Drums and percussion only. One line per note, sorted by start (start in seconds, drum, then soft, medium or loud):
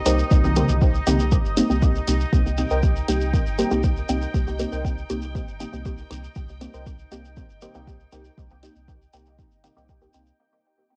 0.06 closed hi-hat medium
0.06 shekere medium
0.18 shekere soft
0.31 kick loud
0.31 shekere medium
0.44 low conga medium
0.44 shekere soft
0.56 closed hi-hat medium
0.56 high tom medium
0.56 shekere medium
0.69 low conga medium
0.69 shekere soft
0.81 kick loud
0.81 shekere soft
0.94 shekere soft
1.07 closed hi-hat medium
1.07 high tom medium
1.07 shekere medium
1.19 shekere soft
1.32 kick loud
1.32 shekere medium
1.45 shekere soft
1.57 closed hi-hat medium
1.57 shekere medium
1.70 shekere soft
1.82 kick loud
1.82 shekere medium
1.95 shekere soft
2.07 closed hi-hat medium
2.07 shekere medium
2.20 shekere soft
2.33 kick loud
2.33 shekere soft
2.47 shekere soft
2.57 closed hi-hat medium
2.57 shekere medium
2.70 shekere soft
2.83 kick medium
2.83 shekere soft
2.96 shekere soft
3.08 closed hi-hat medium
3.08 shekere medium
3.21 shekere soft
3.34 kick loud
3.34 shekere soft
3.46 shekere soft
3.59 closed hi-hat medium
3.59 shekere medium
3.71 shekere soft
3.83 kick medium
3.83 shekere soft
3.97 shekere soft
4.09 closed hi-hat medium
4.09 shekere medium
4.22 shekere soft
4.34 kick loud
4.34 shekere soft
4.48 shekere soft
4.59 closed hi-hat medium
4.59 shekere medium
4.72 shekere soft
4.85 kick medium
4.85 shekere soft
4.98 shekere soft
5.10 closed hi-hat medium
5.10 shekere medium
5.22 shekere soft
5.35 kick loud
5.35 shekere soft
5.48 shekere soft
5.60 closed hi-hat medium
5.60 shekere medium
5.73 shekere soft
5.86 kick medium
5.86 shekere soft
5.98 shekere soft
6.11 closed hi-hat medium
6.11 shekere medium
6.24 shekere soft
6.36 kick loud
6.36 shekere soft
6.49 shekere soft
6.61 closed hi-hat medium
6.61 shekere medium
6.74 shekere soft
6.87 kick medium
6.87 shekere soft
6.99 shekere soft
7.12 closed hi-hat medium
7.12 shekere medium
7.25 shekere soft
7.37 kick loud
7.37 shekere soft
7.50 shekere soft
7.62 closed hi-hat medium
7.62 shekere medium
7.74 shekere soft
7.87 kick medium
7.87 shekere soft
8.00 shekere soft
8.12 closed hi-hat medium
8.12 shekere medium
8.25 shekere soft
8.38 kick loud
8.38 shekere soft
8.50 shekere soft
8.63 closed hi-hat medium
8.63 shekere medium
8.76 shekere soft
8.88 kick medium
8.88 shekere soft
9.02 shekere soft
9.13 closed hi-hat medium
9.13 shekere medium
9.26 shekere soft
9.39 kick loud
9.39 shekere soft
9.51 shekere soft
9.64 closed hi-hat medium
9.64 shekere medium
9.77 shekere soft
9.89 kick medium
9.89 shekere soft
10.02 shekere soft
10.13 closed hi-hat medium
10.13 shekere medium
10.26 shekere soft